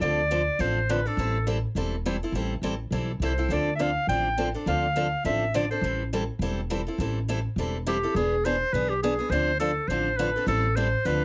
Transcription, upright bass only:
0, 0, Header, 1, 2, 480
1, 0, Start_track
1, 0, Key_signature, 0, "minor"
1, 0, Tempo, 290557
1, 20, Time_signature, 4, 2, 24, 8
1, 18580, End_track
2, 0, Start_track
2, 0, Title_t, "Upright bass"
2, 0, Program_c, 0, 32
2, 10, Note_on_c, 0, 38, 75
2, 782, Note_off_c, 0, 38, 0
2, 972, Note_on_c, 0, 33, 71
2, 1743, Note_off_c, 0, 33, 0
2, 1932, Note_on_c, 0, 33, 85
2, 2703, Note_off_c, 0, 33, 0
2, 2891, Note_on_c, 0, 28, 68
2, 3662, Note_off_c, 0, 28, 0
2, 3834, Note_on_c, 0, 33, 84
2, 4228, Note_off_c, 0, 33, 0
2, 4320, Note_on_c, 0, 33, 66
2, 4736, Note_off_c, 0, 33, 0
2, 4800, Note_on_c, 0, 35, 69
2, 5217, Note_off_c, 0, 35, 0
2, 5281, Note_on_c, 0, 36, 67
2, 5697, Note_off_c, 0, 36, 0
2, 5759, Note_on_c, 0, 38, 80
2, 6535, Note_off_c, 0, 38, 0
2, 6725, Note_on_c, 0, 33, 69
2, 7499, Note_off_c, 0, 33, 0
2, 7700, Note_on_c, 0, 38, 81
2, 8468, Note_off_c, 0, 38, 0
2, 8661, Note_on_c, 0, 33, 74
2, 9428, Note_off_c, 0, 33, 0
2, 9606, Note_on_c, 0, 33, 81
2, 10379, Note_off_c, 0, 33, 0
2, 10557, Note_on_c, 0, 28, 78
2, 11334, Note_off_c, 0, 28, 0
2, 11535, Note_on_c, 0, 33, 82
2, 12304, Note_off_c, 0, 33, 0
2, 12489, Note_on_c, 0, 28, 72
2, 13261, Note_off_c, 0, 28, 0
2, 13455, Note_on_c, 0, 28, 77
2, 14225, Note_off_c, 0, 28, 0
2, 14416, Note_on_c, 0, 35, 72
2, 15185, Note_off_c, 0, 35, 0
2, 15355, Note_on_c, 0, 38, 84
2, 16132, Note_off_c, 0, 38, 0
2, 16314, Note_on_c, 0, 33, 77
2, 17091, Note_off_c, 0, 33, 0
2, 17287, Note_on_c, 0, 33, 85
2, 18059, Note_off_c, 0, 33, 0
2, 18258, Note_on_c, 0, 38, 75
2, 18580, Note_off_c, 0, 38, 0
2, 18580, End_track
0, 0, End_of_file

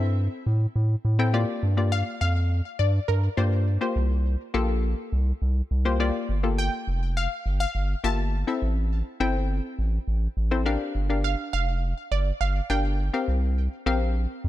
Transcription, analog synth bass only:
0, 0, Header, 1, 2, 480
1, 0, Start_track
1, 0, Tempo, 582524
1, 1103, Time_signature, 4, 2, 24, 8
1, 11936, End_track
2, 0, Start_track
2, 0, Title_t, "Analog synth bass"
2, 0, Program_c, 0, 38
2, 0, Note_on_c, 0, 43, 97
2, 234, Note_off_c, 0, 43, 0
2, 383, Note_on_c, 0, 45, 106
2, 549, Note_off_c, 0, 45, 0
2, 623, Note_on_c, 0, 45, 99
2, 789, Note_off_c, 0, 45, 0
2, 863, Note_on_c, 0, 45, 101
2, 1195, Note_off_c, 0, 45, 0
2, 1343, Note_on_c, 0, 43, 92
2, 1675, Note_off_c, 0, 43, 0
2, 1823, Note_on_c, 0, 41, 98
2, 2155, Note_off_c, 0, 41, 0
2, 2302, Note_on_c, 0, 43, 107
2, 2469, Note_off_c, 0, 43, 0
2, 2543, Note_on_c, 0, 43, 104
2, 2709, Note_off_c, 0, 43, 0
2, 2782, Note_on_c, 0, 43, 96
2, 3115, Note_off_c, 0, 43, 0
2, 3262, Note_on_c, 0, 36, 97
2, 3595, Note_off_c, 0, 36, 0
2, 3744, Note_on_c, 0, 34, 94
2, 4076, Note_off_c, 0, 34, 0
2, 4223, Note_on_c, 0, 36, 110
2, 4389, Note_off_c, 0, 36, 0
2, 4464, Note_on_c, 0, 36, 99
2, 4630, Note_off_c, 0, 36, 0
2, 4705, Note_on_c, 0, 36, 99
2, 5036, Note_off_c, 0, 36, 0
2, 5184, Note_on_c, 0, 31, 97
2, 5516, Note_off_c, 0, 31, 0
2, 5665, Note_on_c, 0, 29, 92
2, 5996, Note_off_c, 0, 29, 0
2, 6145, Note_on_c, 0, 31, 108
2, 6310, Note_off_c, 0, 31, 0
2, 6385, Note_on_c, 0, 31, 104
2, 6550, Note_off_c, 0, 31, 0
2, 6624, Note_on_c, 0, 31, 96
2, 6956, Note_off_c, 0, 31, 0
2, 7104, Note_on_c, 0, 33, 98
2, 7436, Note_off_c, 0, 33, 0
2, 7583, Note_on_c, 0, 31, 100
2, 7915, Note_off_c, 0, 31, 0
2, 8064, Note_on_c, 0, 33, 102
2, 8230, Note_off_c, 0, 33, 0
2, 8303, Note_on_c, 0, 33, 100
2, 8469, Note_off_c, 0, 33, 0
2, 8544, Note_on_c, 0, 33, 98
2, 8876, Note_off_c, 0, 33, 0
2, 9023, Note_on_c, 0, 31, 94
2, 9355, Note_off_c, 0, 31, 0
2, 9505, Note_on_c, 0, 29, 98
2, 9836, Note_off_c, 0, 29, 0
2, 9983, Note_on_c, 0, 31, 111
2, 10149, Note_off_c, 0, 31, 0
2, 10223, Note_on_c, 0, 31, 103
2, 10389, Note_off_c, 0, 31, 0
2, 10463, Note_on_c, 0, 31, 98
2, 10795, Note_off_c, 0, 31, 0
2, 10943, Note_on_c, 0, 36, 92
2, 11275, Note_off_c, 0, 36, 0
2, 11423, Note_on_c, 0, 34, 98
2, 11755, Note_off_c, 0, 34, 0
2, 11902, Note_on_c, 0, 41, 104
2, 11936, Note_off_c, 0, 41, 0
2, 11936, End_track
0, 0, End_of_file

